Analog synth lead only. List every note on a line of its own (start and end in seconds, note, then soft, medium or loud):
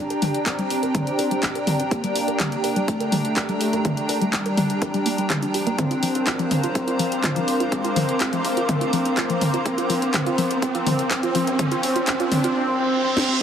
0.00 0.37 D4 loud
0.46 1.82 C4 loud
1.91 2.79 A#3 loud
2.88 4.35 A3 loud
4.33 5.78 G3 loud
5.79 6.66 C4 loud
6.75 7.63 C4 loud
7.72 8.59 C4 loud
8.69 9.56 C4 loud
9.66 10.12 C4 loud
10.14 10.60 C4 loud
10.62 11.09 C4 loud
11.11 11.57 C4 loud
11.59 11.81 C4 loud
11.83 12.06 C4 loud
12.08 12.30 C4 loud
12.32 12.54 C4 loud
12.56 12.78 C4 loud
12.80 13.02 C4 loud
13.04 13.27 C4 loud
13.28 13.42 C4 loud